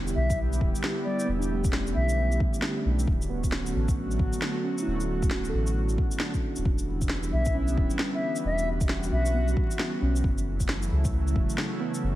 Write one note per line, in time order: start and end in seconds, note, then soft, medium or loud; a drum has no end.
0.00 0.15 E1 medium
0.00 10.20 D3 medium
0.00 3.04 G3 medium
0.00 0.34 B3 medium
0.00 3.04 B3 medium
0.00 3.04 E4 medium
0.00 3.04 G4 medium
0.07 shaker soft
0.15 0.60 B1 medium
0.15 0.39 E5 medium
0.30 kick loud
0.30 shaker medium
0.53 shaker soft
0.61 0.74 D1 medium
0.61 kick loud
0.75 shaker medium
0.84 snare medium
1.05 1.91 G3 medium
1.05 1.29 D5 medium
1.20 shaker medium
1.25 1.94 E1 loud
1.25 2.07 B3 soft
1.39 2.18 D4 medium
1.39 shaker soft
1.51 2.36 A3 medium
1.64 kick loud
1.64 shaker medium
1.70 2.52 C#4 medium
1.70 snare loud
1.87 shaker soft
1.95 2.39 B1 medium
1.95 2.40 E5 medium
2.09 shaker medium
2.32 shaker soft
2.40 kick loud
2.54 shaker medium
2.62 snare loud
2.85 3.06 B1 medium
2.99 shaker medium
3.07 3.74 D1 medium
3.07 6.62 F#3 medium
3.07 6.62 A3 medium
3.07 4.85 C#4 medium
3.07 6.62 F#4 medium
3.07 kick loud
3.22 shaker soft
3.29 4.15 B3 medium
3.44 kick medium
3.44 shaker medium
3.52 snare loud
3.66 shaker soft
3.75 4.19 A1 medium
3.88 kick loud
3.88 shaker medium
4.11 shaker soft
4.19 4.32 A1 medium
4.19 kick loud
4.33 shaker medium
4.42 snare loud
4.64 5.49 C#4 medium
4.78 shaker medium
4.82 5.65 E4 medium
4.87 5.53 D1 medium
4.96 5.29 F#4 soft
5.00 shaker soft
5.22 kick loud
5.22 shaker medium
5.31 6.16 F#4 medium
5.31 snare loud
5.45 shaker soft
5.49 6.32 A4 medium
5.54 5.97 A1 medium
5.67 shaker medium
5.89 shaker soft
5.98 kick loud
6.11 shaker medium
6.20 6.84 D4 medium
6.20 snare loud
6.34 kick medium
6.34 shaker soft
6.56 6.65 D1 medium
6.56 shaker soft
6.65 7.32 E1 loud
6.65 12.15 E3 medium
6.65 10.20 G3 medium
6.65 10.20 B3 medium
6.65 8.43 E4 medium
6.65 kick loud
6.78 shaker soft
7.01 kick medium
7.01 shaker medium
7.09 snare loud
7.23 shaker soft
7.32 7.76 B1 medium
7.32 7.56 E5 medium
7.45 kick medium
7.45 shaker medium
7.55 8.40 C#4 medium
7.68 shaker soft
7.77 7.90 D1 medium
7.77 kick loud
7.90 shaker medium
7.99 snare loud
8.14 8.37 E5 medium
8.36 shaker medium
8.44 9.11 E1 loud
8.44 10.22 F#4 medium
8.44 8.69 E5 medium
8.58 shaker soft
8.81 kick loud
8.81 shaker medium
8.89 snare loud
9.03 shaker soft
9.12 9.55 B1 medium
9.12 9.48 E5 medium
9.26 shaker medium
9.34 10.19 B3 medium
9.48 shaker soft
9.57 kick loud
9.71 shaker medium
9.79 snare loud
10.02 10.23 B1 medium
10.02 10.43 C#4 medium
10.16 shaker soft
10.24 10.90 F#1 medium
10.24 12.15 C#3 medium
10.24 12.15 F#3 medium
10.24 12.15 A3 medium
10.24 12.15 E4 medium
10.24 kick loud
10.38 shaker soft
10.60 kick medium
10.60 shaker medium
10.69 snare loud
10.82 shaker soft
10.91 11.35 C#2 medium
11.05 kick medium
11.05 shaker medium
11.28 shaker soft
11.35 11.48 E1 medium
11.35 kick loud
11.50 shaker medium
11.58 snare loud
11.80 12.15 B3 medium
11.95 shaker soft
12.03 12.15 F#1 loud